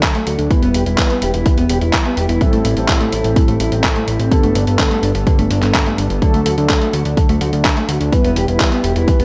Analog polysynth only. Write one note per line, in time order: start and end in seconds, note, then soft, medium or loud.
0.00 0.48 F#3 loud
0.00 0.48 A3 medium
0.00 0.48 D4 medium
0.00 0.48 A4 loud
0.51 0.83 G3 loud
0.51 0.83 B3 medium
0.51 0.83 E4 medium
0.51 0.83 B4 loud
0.86 2.38 G3 medium
0.86 2.38 B3 medium
0.86 2.38 E4 medium
0.86 2.38 B4 loud
2.41 2.74 A2 loud
2.41 2.74 G3 medium
2.41 2.74 C4 medium
2.41 2.74 E4 medium
2.41 2.74 A4 loud
2.77 4.29 A2 loud
2.77 4.29 G3 medium
2.77 4.29 C4 medium
2.77 4.29 E4 medium
2.77 4.29 A4 loud
4.31 4.64 G2 loud
4.31 4.64 G3 medium
4.31 4.64 B3 medium
4.31 4.64 D4 medium
4.31 4.64 A4 loud
4.67 6.19 G2 loud
4.67 6.19 G3 medium
4.67 6.19 B3 medium
4.67 6.19 D4 medium
4.67 6.19 A4 loud
6.22 6.55 F#3 loud
6.22 6.55 A3 medium
6.22 6.55 D4 medium
6.22 6.55 A4 loud
6.58 8.10 F#3 loud
6.58 8.10 A3 medium
6.58 8.10 D4 medium
6.58 8.10 A4 loud
8.12 8.45 G3 loud
8.12 8.45 B3 medium
8.12 8.45 E4 loud
8.12 8.45 B4 loud
8.48 9.25 G3 loud
8.48 9.25 B3 medium
8.48 9.25 E4 medium
8.48 9.25 B4 loud